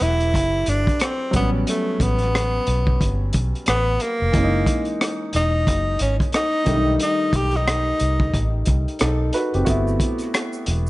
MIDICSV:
0, 0, Header, 1, 5, 480
1, 0, Start_track
1, 0, Tempo, 666667
1, 1203, Time_signature, 4, 2, 24, 8
1, 7847, End_track
2, 0, Start_track
2, 0, Title_t, "Tenor saxophone"
2, 0, Program_c, 0, 66
2, 18, Note_on_c, 0, 64, 97
2, 496, Note_on_c, 0, 62, 88
2, 507, Note_off_c, 0, 64, 0
2, 741, Note_on_c, 0, 60, 88
2, 751, Note_off_c, 0, 62, 0
2, 972, Note_off_c, 0, 60, 0
2, 977, Note_on_c, 0, 59, 83
2, 1082, Note_off_c, 0, 59, 0
2, 1217, Note_on_c, 0, 57, 86
2, 1461, Note_on_c, 0, 59, 82
2, 1472, Note_off_c, 0, 57, 0
2, 2412, Note_off_c, 0, 59, 0
2, 2655, Note_on_c, 0, 59, 100
2, 2896, Note_on_c, 0, 58, 101
2, 2907, Note_off_c, 0, 59, 0
2, 3610, Note_off_c, 0, 58, 0
2, 3858, Note_on_c, 0, 63, 84
2, 4302, Note_off_c, 0, 63, 0
2, 4333, Note_on_c, 0, 61, 73
2, 4439, Note_off_c, 0, 61, 0
2, 4576, Note_on_c, 0, 63, 88
2, 5020, Note_off_c, 0, 63, 0
2, 5060, Note_on_c, 0, 63, 85
2, 5297, Note_on_c, 0, 67, 90
2, 5308, Note_off_c, 0, 63, 0
2, 5445, Note_on_c, 0, 63, 83
2, 5456, Note_off_c, 0, 67, 0
2, 6156, Note_off_c, 0, 63, 0
2, 7847, End_track
3, 0, Start_track
3, 0, Title_t, "Grand piano"
3, 0, Program_c, 1, 0
3, 0, Control_c, 1, 64, 127
3, 0, Note_on_c, 1, 52, 56
3, 0, Note_on_c, 1, 54, 57
3, 0, Note_on_c, 1, 57, 55
3, 0, Note_on_c, 1, 60, 58
3, 0, Note_on_c, 1, 67, 67
3, 0, Note_on_c, 1, 71, 63
3, 924, Note_off_c, 1, 52, 0
3, 931, Note_off_c, 1, 54, 0
3, 937, Note_off_c, 1, 57, 0
3, 943, Note_on_c, 1, 54, 61
3, 944, Note_off_c, 1, 71, 0
3, 958, Note_on_c, 1, 55, 57
3, 970, Note_on_c, 1, 59, 62
3, 971, Control_c, 1, 64, 0
3, 972, Note_off_c, 1, 60, 0
3, 976, Note_off_c, 1, 67, 0
3, 983, Note_on_c, 1, 61, 69
3, 1093, Control_c, 1, 64, 127
3, 2844, Note_off_c, 1, 54, 0
3, 2852, Note_off_c, 1, 55, 0
3, 2857, Note_off_c, 1, 59, 0
3, 2864, Note_off_c, 1, 61, 0
3, 3110, Note_on_c, 1, 52, 62
3, 3122, Note_on_c, 1, 56, 60
3, 3133, Control_c, 1, 64, 0
3, 3135, Note_on_c, 1, 58, 56
3, 3148, Note_on_c, 1, 61, 59
3, 3192, Note_off_c, 1, 61, 0
3, 3195, Note_on_c, 1, 63, 71
3, 3239, Control_c, 1, 64, 127
3, 4767, Note_off_c, 1, 52, 0
3, 4774, Note_off_c, 1, 56, 0
3, 4780, Note_off_c, 1, 58, 0
3, 4785, Note_on_c, 1, 51, 67
3, 4799, Note_on_c, 1, 55, 61
3, 4810, Note_off_c, 1, 63, 0
3, 4811, Control_c, 1, 64, 0
3, 4811, Note_on_c, 1, 57, 62
3, 4825, Note_on_c, 1, 62, 56
3, 4870, Note_off_c, 1, 62, 0
3, 4870, Note_on_c, 1, 63, 70
3, 4928, Control_c, 1, 64, 127
3, 6478, Note_off_c, 1, 63, 0
3, 6487, Note_on_c, 1, 69, 56
3, 6489, Note_on_c, 1, 63, 51
3, 6685, Note_off_c, 1, 51, 0
3, 6692, Note_off_c, 1, 55, 0
3, 6698, Note_off_c, 1, 57, 0
3, 6713, Note_off_c, 1, 69, 0
3, 6714, Note_off_c, 1, 63, 0
3, 6725, Note_on_c, 1, 71, 66
3, 6728, Note_on_c, 1, 66, 57
3, 6861, Note_off_c, 1, 71, 0
3, 6863, Note_off_c, 1, 66, 0
3, 6870, Note_on_c, 1, 67, 53
3, 6875, Note_on_c, 1, 60, 51
3, 6946, Note_on_c, 1, 66, 68
3, 6959, Note_on_c, 1, 57, 68
3, 6971, Note_on_c, 1, 59, 72
3, 6972, Control_c, 1, 64, 0
3, 6984, Note_on_c, 1, 64, 77
3, 7085, Control_c, 1, 64, 127
3, 7096, Note_off_c, 1, 67, 0
3, 7099, Note_off_c, 1, 60, 0
3, 7847, Note_off_c, 1, 57, 0
3, 7847, Note_off_c, 1, 59, 0
3, 7847, Note_off_c, 1, 64, 0
3, 7847, Note_off_c, 1, 66, 0
3, 7847, End_track
4, 0, Start_track
4, 0, Title_t, "Fingered electric bass"
4, 0, Program_c, 2, 33
4, 9, Note_on_c, 2, 28, 84
4, 249, Note_off_c, 2, 28, 0
4, 249, Note_on_c, 2, 30, 78
4, 455, Note_off_c, 2, 30, 0
4, 488, Note_on_c, 2, 31, 78
4, 611, Note_off_c, 2, 31, 0
4, 966, Note_on_c, 2, 33, 97
4, 1174, Note_off_c, 2, 33, 0
4, 1443, Note_on_c, 2, 33, 84
4, 1860, Note_off_c, 2, 33, 0
4, 1927, Note_on_c, 2, 35, 95
4, 2134, Note_off_c, 2, 35, 0
4, 2169, Note_on_c, 2, 31, 78
4, 2375, Note_off_c, 2, 31, 0
4, 2411, Note_on_c, 2, 35, 83
4, 2533, Note_off_c, 2, 35, 0
4, 2650, Note_on_c, 2, 33, 80
4, 2855, Note_off_c, 2, 33, 0
4, 3036, Note_on_c, 2, 29, 86
4, 3116, Note_off_c, 2, 29, 0
4, 3126, Note_on_c, 2, 30, 93
4, 3333, Note_off_c, 2, 30, 0
4, 3850, Note_on_c, 2, 28, 93
4, 4086, Note_off_c, 2, 28, 0
4, 4086, Note_on_c, 2, 30, 82
4, 4294, Note_off_c, 2, 30, 0
4, 4327, Note_on_c, 2, 32, 88
4, 4450, Note_off_c, 2, 32, 0
4, 4804, Note_on_c, 2, 35, 94
4, 5013, Note_off_c, 2, 35, 0
4, 5280, Note_on_c, 2, 35, 88
4, 5699, Note_off_c, 2, 35, 0
4, 5767, Note_on_c, 2, 36, 87
4, 5974, Note_off_c, 2, 36, 0
4, 6004, Note_on_c, 2, 33, 79
4, 6213, Note_off_c, 2, 33, 0
4, 6247, Note_on_c, 2, 36, 78
4, 6370, Note_off_c, 2, 36, 0
4, 6489, Note_on_c, 2, 35, 83
4, 6695, Note_off_c, 2, 35, 0
4, 6873, Note_on_c, 2, 30, 72
4, 6954, Note_off_c, 2, 30, 0
4, 6966, Note_on_c, 2, 31, 89
4, 7174, Note_off_c, 2, 31, 0
4, 7689, Note_on_c, 2, 28, 91
4, 7847, Note_off_c, 2, 28, 0
4, 7847, End_track
5, 0, Start_track
5, 0, Title_t, "Drums"
5, 0, Note_on_c, 9, 42, 75
5, 70, Note_off_c, 9, 42, 0
5, 147, Note_on_c, 9, 42, 33
5, 219, Note_off_c, 9, 42, 0
5, 245, Note_on_c, 9, 36, 71
5, 249, Note_on_c, 9, 42, 69
5, 317, Note_off_c, 9, 36, 0
5, 321, Note_off_c, 9, 42, 0
5, 476, Note_on_c, 9, 42, 67
5, 548, Note_off_c, 9, 42, 0
5, 628, Note_on_c, 9, 36, 94
5, 638, Note_on_c, 9, 42, 33
5, 700, Note_off_c, 9, 36, 0
5, 710, Note_off_c, 9, 42, 0
5, 717, Note_on_c, 9, 42, 79
5, 730, Note_on_c, 9, 37, 101
5, 789, Note_off_c, 9, 42, 0
5, 802, Note_off_c, 9, 37, 0
5, 960, Note_on_c, 9, 42, 69
5, 964, Note_on_c, 9, 36, 99
5, 1032, Note_off_c, 9, 42, 0
5, 1036, Note_off_c, 9, 36, 0
5, 1203, Note_on_c, 9, 42, 79
5, 1275, Note_off_c, 9, 42, 0
5, 1440, Note_on_c, 9, 36, 90
5, 1445, Note_on_c, 9, 42, 63
5, 1447, Note_on_c, 9, 37, 34
5, 1512, Note_off_c, 9, 36, 0
5, 1517, Note_off_c, 9, 42, 0
5, 1519, Note_off_c, 9, 37, 0
5, 1573, Note_on_c, 9, 42, 32
5, 1603, Note_on_c, 9, 37, 29
5, 1645, Note_off_c, 9, 42, 0
5, 1675, Note_off_c, 9, 37, 0
5, 1693, Note_on_c, 9, 37, 89
5, 1694, Note_on_c, 9, 42, 66
5, 1765, Note_off_c, 9, 37, 0
5, 1766, Note_off_c, 9, 42, 0
5, 1920, Note_on_c, 9, 42, 71
5, 1992, Note_off_c, 9, 42, 0
5, 2065, Note_on_c, 9, 36, 80
5, 2137, Note_off_c, 9, 36, 0
5, 2165, Note_on_c, 9, 36, 76
5, 2169, Note_on_c, 9, 42, 63
5, 2237, Note_off_c, 9, 36, 0
5, 2241, Note_off_c, 9, 42, 0
5, 2396, Note_on_c, 9, 42, 69
5, 2408, Note_on_c, 9, 36, 84
5, 2468, Note_off_c, 9, 42, 0
5, 2480, Note_off_c, 9, 36, 0
5, 2558, Note_on_c, 9, 42, 33
5, 2630, Note_off_c, 9, 42, 0
5, 2635, Note_on_c, 9, 42, 79
5, 2649, Note_on_c, 9, 37, 109
5, 2707, Note_off_c, 9, 42, 0
5, 2721, Note_off_c, 9, 37, 0
5, 2878, Note_on_c, 9, 42, 70
5, 2903, Note_on_c, 9, 37, 31
5, 2950, Note_off_c, 9, 42, 0
5, 2975, Note_off_c, 9, 37, 0
5, 3121, Note_on_c, 9, 42, 79
5, 3123, Note_on_c, 9, 36, 95
5, 3193, Note_off_c, 9, 42, 0
5, 3195, Note_off_c, 9, 36, 0
5, 3358, Note_on_c, 9, 36, 91
5, 3362, Note_on_c, 9, 42, 69
5, 3364, Note_on_c, 9, 37, 32
5, 3430, Note_off_c, 9, 36, 0
5, 3434, Note_off_c, 9, 42, 0
5, 3436, Note_off_c, 9, 37, 0
5, 3492, Note_on_c, 9, 42, 29
5, 3564, Note_off_c, 9, 42, 0
5, 3608, Note_on_c, 9, 37, 88
5, 3609, Note_on_c, 9, 42, 67
5, 3680, Note_off_c, 9, 37, 0
5, 3681, Note_off_c, 9, 42, 0
5, 3836, Note_on_c, 9, 42, 73
5, 3908, Note_off_c, 9, 42, 0
5, 4083, Note_on_c, 9, 36, 74
5, 4086, Note_on_c, 9, 42, 70
5, 4155, Note_off_c, 9, 36, 0
5, 4158, Note_off_c, 9, 42, 0
5, 4313, Note_on_c, 9, 42, 73
5, 4385, Note_off_c, 9, 42, 0
5, 4465, Note_on_c, 9, 36, 85
5, 4473, Note_on_c, 9, 42, 35
5, 4537, Note_off_c, 9, 36, 0
5, 4545, Note_off_c, 9, 42, 0
5, 4554, Note_on_c, 9, 42, 73
5, 4567, Note_on_c, 9, 37, 102
5, 4626, Note_off_c, 9, 42, 0
5, 4639, Note_off_c, 9, 37, 0
5, 4795, Note_on_c, 9, 42, 66
5, 4801, Note_on_c, 9, 36, 98
5, 4820, Note_on_c, 9, 37, 36
5, 4867, Note_off_c, 9, 42, 0
5, 4873, Note_off_c, 9, 36, 0
5, 4892, Note_off_c, 9, 37, 0
5, 5037, Note_on_c, 9, 42, 81
5, 5109, Note_off_c, 9, 42, 0
5, 5277, Note_on_c, 9, 36, 88
5, 5280, Note_on_c, 9, 42, 65
5, 5349, Note_off_c, 9, 36, 0
5, 5352, Note_off_c, 9, 42, 0
5, 5409, Note_on_c, 9, 42, 29
5, 5438, Note_on_c, 9, 37, 26
5, 5481, Note_off_c, 9, 42, 0
5, 5510, Note_off_c, 9, 37, 0
5, 5527, Note_on_c, 9, 37, 99
5, 5528, Note_on_c, 9, 42, 63
5, 5599, Note_off_c, 9, 37, 0
5, 5600, Note_off_c, 9, 42, 0
5, 5757, Note_on_c, 9, 42, 66
5, 5829, Note_off_c, 9, 42, 0
5, 5902, Note_on_c, 9, 36, 83
5, 5974, Note_off_c, 9, 36, 0
5, 6002, Note_on_c, 9, 36, 77
5, 6004, Note_on_c, 9, 42, 67
5, 6074, Note_off_c, 9, 36, 0
5, 6076, Note_off_c, 9, 42, 0
5, 6232, Note_on_c, 9, 42, 65
5, 6245, Note_on_c, 9, 36, 82
5, 6304, Note_off_c, 9, 42, 0
5, 6317, Note_off_c, 9, 36, 0
5, 6394, Note_on_c, 9, 42, 33
5, 6466, Note_off_c, 9, 42, 0
5, 6474, Note_on_c, 9, 42, 73
5, 6487, Note_on_c, 9, 37, 104
5, 6546, Note_off_c, 9, 42, 0
5, 6559, Note_off_c, 9, 37, 0
5, 6716, Note_on_c, 9, 42, 77
5, 6740, Note_on_c, 9, 37, 32
5, 6788, Note_off_c, 9, 42, 0
5, 6812, Note_off_c, 9, 37, 0
5, 6867, Note_on_c, 9, 42, 32
5, 6939, Note_off_c, 9, 42, 0
5, 6958, Note_on_c, 9, 42, 78
5, 6958, Note_on_c, 9, 82, 52
5, 6962, Note_on_c, 9, 36, 95
5, 7030, Note_off_c, 9, 42, 0
5, 7030, Note_off_c, 9, 82, 0
5, 7034, Note_off_c, 9, 36, 0
5, 7110, Note_on_c, 9, 82, 39
5, 7182, Note_off_c, 9, 82, 0
5, 7198, Note_on_c, 9, 36, 87
5, 7202, Note_on_c, 9, 42, 69
5, 7270, Note_off_c, 9, 36, 0
5, 7274, Note_off_c, 9, 42, 0
5, 7332, Note_on_c, 9, 42, 30
5, 7340, Note_on_c, 9, 82, 46
5, 7361, Note_on_c, 9, 37, 27
5, 7404, Note_off_c, 9, 42, 0
5, 7412, Note_off_c, 9, 82, 0
5, 7433, Note_off_c, 9, 37, 0
5, 7445, Note_on_c, 9, 26, 59
5, 7445, Note_on_c, 9, 82, 60
5, 7449, Note_on_c, 9, 37, 94
5, 7450, Note_on_c, 9, 42, 58
5, 7517, Note_off_c, 9, 26, 0
5, 7517, Note_off_c, 9, 82, 0
5, 7521, Note_off_c, 9, 37, 0
5, 7522, Note_off_c, 9, 42, 0
5, 7580, Note_on_c, 9, 82, 46
5, 7652, Note_off_c, 9, 82, 0
5, 7677, Note_on_c, 9, 42, 72
5, 7749, Note_off_c, 9, 42, 0
5, 7824, Note_on_c, 9, 82, 47
5, 7847, Note_off_c, 9, 82, 0
5, 7847, End_track
0, 0, End_of_file